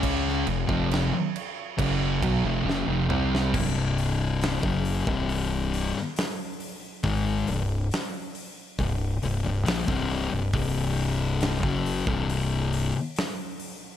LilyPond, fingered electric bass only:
\new Staff \with { instrumentName = "Fingered electric bass" } { \clef bass \time 4/4 \key f \minor \tempo 4 = 69 des,8 f,,16 f,,8 r8. fis,,8 b,,16 f,,16 fis,,16 f,,16 c,8 | c,,4~ c,,16 fis,,8 c,,4 r4 r16 | aes,,8 c,,8 r4 c,,8 c,,16 c,,16 bes,,16 c,,8 c,,16 | c,,4~ c,,16 fis,,8 c,,4 r4 r16 | }